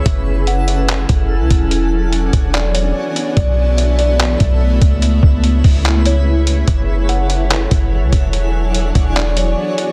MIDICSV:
0, 0, Header, 1, 6, 480
1, 0, Start_track
1, 0, Key_signature, 3, "minor"
1, 0, Tempo, 413793
1, 66, Time_signature, 4, 2, 24, 8
1, 11510, End_track
2, 0, Start_track
2, 0, Title_t, "Kalimba"
2, 0, Program_c, 0, 108
2, 67, Note_on_c, 0, 76, 94
2, 518, Note_off_c, 0, 76, 0
2, 548, Note_on_c, 0, 78, 81
2, 775, Note_off_c, 0, 78, 0
2, 784, Note_on_c, 0, 76, 75
2, 1938, Note_off_c, 0, 76, 0
2, 2941, Note_on_c, 0, 74, 75
2, 3171, Note_off_c, 0, 74, 0
2, 3182, Note_on_c, 0, 73, 72
2, 3412, Note_off_c, 0, 73, 0
2, 3905, Note_on_c, 0, 74, 103
2, 4357, Note_off_c, 0, 74, 0
2, 4377, Note_on_c, 0, 76, 89
2, 4609, Note_off_c, 0, 76, 0
2, 4627, Note_on_c, 0, 74, 90
2, 5780, Note_off_c, 0, 74, 0
2, 7031, Note_on_c, 0, 73, 88
2, 7705, Note_off_c, 0, 73, 0
2, 7749, Note_on_c, 0, 76, 87
2, 8199, Note_off_c, 0, 76, 0
2, 8224, Note_on_c, 0, 78, 81
2, 8453, Note_off_c, 0, 78, 0
2, 8463, Note_on_c, 0, 76, 74
2, 9618, Note_off_c, 0, 76, 0
2, 10622, Note_on_c, 0, 74, 78
2, 10852, Note_off_c, 0, 74, 0
2, 10864, Note_on_c, 0, 73, 74
2, 11093, Note_off_c, 0, 73, 0
2, 11510, End_track
3, 0, Start_track
3, 0, Title_t, "Synth texture"
3, 0, Program_c, 1, 99
3, 71, Note_on_c, 1, 69, 83
3, 73, Note_on_c, 1, 78, 81
3, 73, Note_on_c, 1, 88, 96
3, 1969, Note_off_c, 1, 69, 0
3, 1970, Note_off_c, 1, 88, 0
3, 1983, Note_on_c, 1, 73, 78
3, 1984, Note_on_c, 1, 62, 86
3, 1985, Note_on_c, 1, 68, 77
3, 3871, Note_off_c, 1, 78, 0
3, 3885, Note_off_c, 1, 73, 0
3, 3886, Note_off_c, 1, 62, 0
3, 3886, Note_off_c, 1, 68, 0
3, 3902, Note_on_c, 1, 59, 82
3, 3902, Note_on_c, 1, 69, 78
3, 3902, Note_on_c, 1, 76, 93
3, 5805, Note_off_c, 1, 59, 0
3, 5805, Note_off_c, 1, 69, 0
3, 5820, Note_on_c, 1, 61, 84
3, 5821, Note_on_c, 1, 71, 78
3, 7706, Note_off_c, 1, 76, 0
3, 7724, Note_off_c, 1, 61, 0
3, 7724, Note_off_c, 1, 71, 0
3, 7743, Note_on_c, 1, 78, 92
3, 7745, Note_on_c, 1, 69, 79
3, 7746, Note_on_c, 1, 64, 85
3, 9646, Note_off_c, 1, 69, 0
3, 9647, Note_off_c, 1, 64, 0
3, 9662, Note_on_c, 1, 73, 78
3, 9663, Note_on_c, 1, 62, 88
3, 9664, Note_on_c, 1, 68, 78
3, 11510, Note_off_c, 1, 62, 0
3, 11510, Note_off_c, 1, 68, 0
3, 11510, Note_off_c, 1, 73, 0
3, 11510, Note_off_c, 1, 78, 0
3, 11510, End_track
4, 0, Start_track
4, 0, Title_t, "Ambient pad"
4, 0, Program_c, 2, 92
4, 68, Note_on_c, 2, 80, 81
4, 69, Note_on_c, 2, 54, 84
4, 69, Note_on_c, 2, 61, 81
4, 69, Note_on_c, 2, 69, 95
4, 70, Note_on_c, 2, 64, 76
4, 1968, Note_off_c, 2, 54, 0
4, 1968, Note_off_c, 2, 61, 0
4, 1968, Note_off_c, 2, 69, 0
4, 1969, Note_off_c, 2, 64, 0
4, 1988, Note_on_c, 2, 59, 77
4, 1988, Note_on_c, 2, 62, 76
4, 1989, Note_on_c, 2, 52, 87
4, 1989, Note_on_c, 2, 66, 80
4, 1989, Note_on_c, 2, 73, 78
4, 3868, Note_off_c, 2, 80, 0
4, 3888, Note_off_c, 2, 52, 0
4, 3888, Note_off_c, 2, 62, 0
4, 3888, Note_off_c, 2, 66, 0
4, 3888, Note_off_c, 2, 73, 0
4, 3907, Note_on_c, 2, 57, 84
4, 3908, Note_on_c, 2, 64, 91
4, 5789, Note_off_c, 2, 59, 0
4, 5807, Note_off_c, 2, 57, 0
4, 5828, Note_on_c, 2, 71, 97
4, 5829, Note_on_c, 2, 49, 84
4, 5829, Note_on_c, 2, 73, 79
4, 5830, Note_on_c, 2, 68, 74
4, 7728, Note_off_c, 2, 49, 0
4, 7728, Note_off_c, 2, 71, 0
4, 7729, Note_off_c, 2, 68, 0
4, 7747, Note_on_c, 2, 54, 85
4, 7748, Note_on_c, 2, 69, 90
4, 7748, Note_on_c, 2, 80, 78
4, 9620, Note_off_c, 2, 64, 0
4, 9647, Note_off_c, 2, 54, 0
4, 9648, Note_off_c, 2, 69, 0
4, 9662, Note_on_c, 2, 62, 77
4, 9662, Note_on_c, 2, 66, 76
4, 9663, Note_on_c, 2, 59, 78
4, 9664, Note_on_c, 2, 52, 87
4, 11510, Note_off_c, 2, 52, 0
4, 11510, Note_off_c, 2, 59, 0
4, 11510, Note_off_c, 2, 62, 0
4, 11510, Note_off_c, 2, 66, 0
4, 11510, Note_off_c, 2, 73, 0
4, 11510, Note_off_c, 2, 80, 0
4, 11510, End_track
5, 0, Start_track
5, 0, Title_t, "808-style bass"
5, 0, Program_c, 3, 38
5, 66, Note_on_c, 3, 30, 113
5, 1220, Note_off_c, 3, 30, 0
5, 1269, Note_on_c, 3, 30, 108
5, 1625, Note_on_c, 3, 37, 96
5, 1642, Note_off_c, 3, 30, 0
5, 1739, Note_off_c, 3, 37, 0
5, 1747, Note_on_c, 3, 28, 100
5, 2668, Note_off_c, 3, 28, 0
5, 2706, Note_on_c, 3, 28, 99
5, 3397, Note_off_c, 3, 28, 0
5, 3907, Note_on_c, 3, 35, 106
5, 5060, Note_off_c, 3, 35, 0
5, 5110, Note_on_c, 3, 35, 104
5, 5568, Note_off_c, 3, 35, 0
5, 5587, Note_on_c, 3, 37, 101
5, 6047, Note_off_c, 3, 37, 0
5, 6065, Note_on_c, 3, 37, 104
5, 6526, Note_off_c, 3, 37, 0
5, 6547, Note_on_c, 3, 37, 99
5, 7700, Note_off_c, 3, 37, 0
5, 7745, Note_on_c, 3, 30, 102
5, 8899, Note_off_c, 3, 30, 0
5, 8948, Note_on_c, 3, 30, 108
5, 9305, Note_on_c, 3, 37, 101
5, 9322, Note_off_c, 3, 30, 0
5, 9419, Note_off_c, 3, 37, 0
5, 9426, Note_on_c, 3, 28, 101
5, 10347, Note_off_c, 3, 28, 0
5, 10386, Note_on_c, 3, 28, 103
5, 11077, Note_off_c, 3, 28, 0
5, 11510, End_track
6, 0, Start_track
6, 0, Title_t, "Drums"
6, 67, Note_on_c, 9, 36, 120
6, 67, Note_on_c, 9, 42, 86
6, 183, Note_off_c, 9, 36, 0
6, 183, Note_off_c, 9, 42, 0
6, 547, Note_on_c, 9, 42, 71
6, 663, Note_off_c, 9, 42, 0
6, 786, Note_on_c, 9, 42, 67
6, 902, Note_off_c, 9, 42, 0
6, 1026, Note_on_c, 9, 42, 76
6, 1038, Note_on_c, 9, 39, 115
6, 1142, Note_off_c, 9, 42, 0
6, 1154, Note_off_c, 9, 39, 0
6, 1264, Note_on_c, 9, 42, 91
6, 1269, Note_on_c, 9, 36, 97
6, 1380, Note_off_c, 9, 42, 0
6, 1385, Note_off_c, 9, 36, 0
6, 1746, Note_on_c, 9, 42, 78
6, 1747, Note_on_c, 9, 36, 99
6, 1862, Note_off_c, 9, 42, 0
6, 1863, Note_off_c, 9, 36, 0
6, 1986, Note_on_c, 9, 42, 88
6, 2102, Note_off_c, 9, 42, 0
6, 2466, Note_on_c, 9, 42, 73
6, 2582, Note_off_c, 9, 42, 0
6, 2705, Note_on_c, 9, 42, 68
6, 2707, Note_on_c, 9, 36, 88
6, 2821, Note_off_c, 9, 42, 0
6, 2823, Note_off_c, 9, 36, 0
6, 2945, Note_on_c, 9, 42, 79
6, 2957, Note_on_c, 9, 39, 122
6, 3061, Note_off_c, 9, 42, 0
6, 3073, Note_off_c, 9, 39, 0
6, 3186, Note_on_c, 9, 42, 90
6, 3302, Note_off_c, 9, 42, 0
6, 3668, Note_on_c, 9, 42, 76
6, 3784, Note_off_c, 9, 42, 0
6, 3907, Note_on_c, 9, 36, 115
6, 3907, Note_on_c, 9, 42, 84
6, 4023, Note_off_c, 9, 36, 0
6, 4023, Note_off_c, 9, 42, 0
6, 4386, Note_on_c, 9, 42, 73
6, 4502, Note_off_c, 9, 42, 0
6, 4625, Note_on_c, 9, 42, 66
6, 4741, Note_off_c, 9, 42, 0
6, 4866, Note_on_c, 9, 42, 74
6, 4878, Note_on_c, 9, 39, 123
6, 4982, Note_off_c, 9, 42, 0
6, 4994, Note_off_c, 9, 39, 0
6, 5105, Note_on_c, 9, 42, 87
6, 5109, Note_on_c, 9, 36, 90
6, 5221, Note_off_c, 9, 42, 0
6, 5225, Note_off_c, 9, 36, 0
6, 5586, Note_on_c, 9, 42, 75
6, 5587, Note_on_c, 9, 36, 102
6, 5702, Note_off_c, 9, 42, 0
6, 5703, Note_off_c, 9, 36, 0
6, 5826, Note_on_c, 9, 42, 81
6, 5942, Note_off_c, 9, 42, 0
6, 6065, Note_on_c, 9, 36, 99
6, 6181, Note_off_c, 9, 36, 0
6, 6306, Note_on_c, 9, 42, 72
6, 6422, Note_off_c, 9, 42, 0
6, 6545, Note_on_c, 9, 46, 53
6, 6546, Note_on_c, 9, 36, 87
6, 6661, Note_off_c, 9, 46, 0
6, 6662, Note_off_c, 9, 36, 0
6, 6785, Note_on_c, 9, 42, 72
6, 6797, Note_on_c, 9, 39, 124
6, 6901, Note_off_c, 9, 42, 0
6, 6913, Note_off_c, 9, 39, 0
6, 7024, Note_on_c, 9, 42, 92
6, 7140, Note_off_c, 9, 42, 0
6, 7505, Note_on_c, 9, 42, 76
6, 7621, Note_off_c, 9, 42, 0
6, 7744, Note_on_c, 9, 42, 84
6, 7745, Note_on_c, 9, 36, 120
6, 7860, Note_off_c, 9, 42, 0
6, 7861, Note_off_c, 9, 36, 0
6, 8224, Note_on_c, 9, 42, 74
6, 8340, Note_off_c, 9, 42, 0
6, 8465, Note_on_c, 9, 42, 68
6, 8581, Note_off_c, 9, 42, 0
6, 8705, Note_on_c, 9, 42, 76
6, 8717, Note_on_c, 9, 39, 120
6, 8821, Note_off_c, 9, 42, 0
6, 8833, Note_off_c, 9, 39, 0
6, 8946, Note_on_c, 9, 42, 91
6, 8948, Note_on_c, 9, 36, 94
6, 9062, Note_off_c, 9, 42, 0
6, 9064, Note_off_c, 9, 36, 0
6, 9426, Note_on_c, 9, 36, 102
6, 9426, Note_on_c, 9, 42, 79
6, 9542, Note_off_c, 9, 36, 0
6, 9542, Note_off_c, 9, 42, 0
6, 9665, Note_on_c, 9, 42, 79
6, 9781, Note_off_c, 9, 42, 0
6, 10144, Note_on_c, 9, 42, 75
6, 10260, Note_off_c, 9, 42, 0
6, 10385, Note_on_c, 9, 42, 69
6, 10386, Note_on_c, 9, 36, 85
6, 10501, Note_off_c, 9, 42, 0
6, 10502, Note_off_c, 9, 36, 0
6, 10625, Note_on_c, 9, 42, 74
6, 10637, Note_on_c, 9, 39, 127
6, 10741, Note_off_c, 9, 42, 0
6, 10753, Note_off_c, 9, 39, 0
6, 10865, Note_on_c, 9, 42, 93
6, 10981, Note_off_c, 9, 42, 0
6, 11345, Note_on_c, 9, 42, 75
6, 11461, Note_off_c, 9, 42, 0
6, 11510, End_track
0, 0, End_of_file